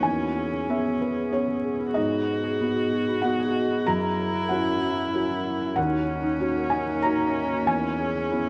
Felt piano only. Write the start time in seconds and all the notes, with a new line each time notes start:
0.03 E2 G#5
0.68 B3 C#4 G#4 E5
1.02 B4
1.33 B3 C#4 G#4 C#5
1.94 G#2 D#5
2.61 B3 D#4 F#4
3.22 B3 D#4 F#4 F#5
3.86 F#2 A#5
4.49 C#4 E4 F#4 F#5
5.14 C#4 E4 F#4
5.76 D#2 F#5
6.39 C#4 D#4 F#4
6.70 G#5
7.02 C#4 D#4 F#4 A#5
7.67 E2 G#5
8.31 B3 C#4 E4